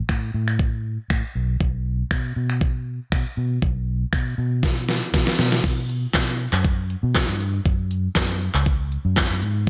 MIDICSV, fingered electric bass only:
0, 0, Header, 1, 2, 480
1, 0, Start_track
1, 0, Tempo, 504202
1, 1530, Time_signature, 4, 2, 24, 8
1, 9231, End_track
2, 0, Start_track
2, 0, Title_t, "Fingered electric bass"
2, 0, Program_c, 0, 33
2, 87, Note_on_c, 0, 45, 91
2, 286, Note_off_c, 0, 45, 0
2, 327, Note_on_c, 0, 45, 97
2, 922, Note_off_c, 0, 45, 0
2, 1050, Note_on_c, 0, 45, 97
2, 1155, Note_off_c, 0, 45, 0
2, 1289, Note_on_c, 0, 35, 91
2, 1487, Note_off_c, 0, 35, 0
2, 1528, Note_on_c, 0, 35, 93
2, 1924, Note_off_c, 0, 35, 0
2, 2008, Note_on_c, 0, 47, 91
2, 2207, Note_off_c, 0, 47, 0
2, 2250, Note_on_c, 0, 47, 93
2, 2843, Note_off_c, 0, 47, 0
2, 2972, Note_on_c, 0, 47, 99
2, 3076, Note_off_c, 0, 47, 0
2, 3211, Note_on_c, 0, 47, 94
2, 3408, Note_off_c, 0, 47, 0
2, 3450, Note_on_c, 0, 35, 97
2, 3845, Note_off_c, 0, 35, 0
2, 3931, Note_on_c, 0, 47, 92
2, 4128, Note_off_c, 0, 47, 0
2, 4170, Note_on_c, 0, 47, 97
2, 4763, Note_off_c, 0, 47, 0
2, 4893, Note_on_c, 0, 47, 98
2, 4997, Note_off_c, 0, 47, 0
2, 5132, Note_on_c, 0, 47, 90
2, 5329, Note_off_c, 0, 47, 0
2, 5849, Note_on_c, 0, 47, 87
2, 6152, Note_off_c, 0, 47, 0
2, 6214, Note_on_c, 0, 42, 92
2, 6610, Note_off_c, 0, 42, 0
2, 6693, Note_on_c, 0, 47, 95
2, 6892, Note_off_c, 0, 47, 0
2, 6935, Note_on_c, 0, 43, 94
2, 7227, Note_off_c, 0, 43, 0
2, 7289, Note_on_c, 0, 42, 99
2, 7685, Note_off_c, 0, 42, 0
2, 7768, Note_on_c, 0, 42, 95
2, 8071, Note_off_c, 0, 42, 0
2, 8135, Note_on_c, 0, 37, 91
2, 8531, Note_off_c, 0, 37, 0
2, 8614, Note_on_c, 0, 42, 94
2, 8813, Note_off_c, 0, 42, 0
2, 8853, Note_on_c, 0, 42, 102
2, 8947, Note_off_c, 0, 42, 0
2, 8966, Note_on_c, 0, 44, 94
2, 9231, Note_off_c, 0, 44, 0
2, 9231, End_track
0, 0, End_of_file